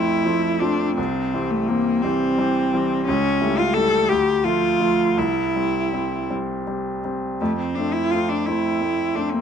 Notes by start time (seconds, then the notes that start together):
Already playing: F2 F3 A3 C4 E4
0.25 F3 A3 C4
0.60 F3 A3 C4 D4
0.96 C2 C4
1.34 E3 G3 C4
1.51 A3
1.68 E3 G3 A#3 C4
2.03 E3 G3 C4
2.38 E3 G3 C4
2.74 E3 G3 C4
3.06 C#2 C#4
3.41 G3 A3 E4
3.58 F4
3.74 G3 A3 E4 A4
4.09 D2 G4
4.44 F3 A3 F4
4.80 F3 A3 F4
5.17 C2 E4
5.56 G3 C4
5.93 G3 C4
6.30 G3 C4
6.67 G3 C4
7.05 G3 C4
7.41 F2 A3
7.59 C4
7.75 A3 C4 D4
7.94 E4
8.11 A3 C4 F4
8.29 D4
8.46 A3 C4 E4
8.81 A3 C4
9.15 A3 C4 D4
9.33 A#3